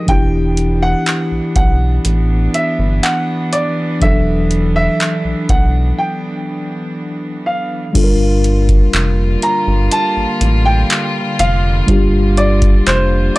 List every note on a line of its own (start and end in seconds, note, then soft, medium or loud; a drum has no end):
0.00 0.10 D#4 soft
0.00 0.11 G4 soft
0.00 0.12 A#4 medium
0.07 0.95 E1 loud
0.07 3.97 E3 medium
0.07 7.91 E3 medium
0.07 7.91 B3 medium
0.07 3.98 D4 medium
0.07 7.91 D4 medium
0.07 3.98 E4 medium
0.07 0.85 G5 loud
0.07 kick loud
0.07 closed hi-hat medium
0.11 3.99 G4 medium
0.57 closed hi-hat medium
0.83 1.55 F#5 loud
1.06 clap loud
1.06 closed hi-hat medium
1.32 1.41 B1 soft
1.56 1.99 B1 medium
1.56 2.50 F#5 medium
1.56 kick medium
1.56 closed hi-hat medium
2.05 2.48 A1 loud
2.05 closed hi-hat medium
2.54 3.05 E5 medium
2.54 closed hi-hat medium
2.79 3.01 G1 loud
3.03 3.54 F#5 medium
3.03 clap loud
3.03 closed hi-hat medium
3.53 3.98 D5 medium
3.53 closed hi-hat medium
4.00 4.88 E1 loud
4.00 7.90 E3 medium
4.00 7.92 F#3 medium
4.00 7.91 D4 medium
4.00 4.72 E5 medium
4.00 kick loud
4.00 closed hi-hat medium
4.04 7.92 A4 medium
4.51 closed hi-hat medium
4.76 5.52 E5 loud
5.00 clap loud
5.00 closed hi-hat medium
5.25 5.35 B1 soft
5.49 5.93 B1 medium
5.49 6.00 F#5 medium
5.49 kick medium
5.49 closed hi-hat medium
5.98 7.42 G5 medium
7.46 9.39 F5 medium
7.93 8.82 G1 loud
7.93 13.38 D3 medium
7.93 11.84 G3 medium
7.93 13.38 G3 medium
7.93 13.38 A#3 medium
7.93 11.84 D4 medium
7.93 13.38 F4 medium
7.93 11.85 F4 medium
7.93 kick loud
7.93 closed hi-hat medium
7.93 crash loud
7.97 8.03 A4 medium
8.04 11.89 A#4 medium
8.44 closed hi-hat soft
8.69 kick medium
8.69 closed hi-hat soft
8.93 9.37 F1 medium
8.93 clap loud
8.93 closed hi-hat medium
9.42 9.94 A#5 medium
9.42 closed hi-hat medium
9.67 9.89 G1 medium
9.91 10.62 A5 loud
9.91 closed hi-hat medium
10.17 10.26 A1 soft
10.41 10.84 A1 medium
10.41 closed hi-hat medium
10.66 11.35 G5 medium
10.90 clap loud
10.90 closed hi-hat medium
11.39 11.83 F1 loud
11.39 12.34 F5 loud
11.39 closed hi-hat medium
11.87 12.75 G1 loud
11.87 13.38 G3 medium
11.87 13.38 D4 medium
11.87 13.38 F4 medium
11.87 kick loud
11.87 closed hi-hat medium
11.91 13.38 G4 medium
12.37 12.83 D5 medium
12.37 closed hi-hat medium
12.62 kick medium
12.62 closed hi-hat soft
12.87 13.30 F1 medium
12.87 13.38 C5 medium
12.87 clap loud
12.87 closed hi-hat medium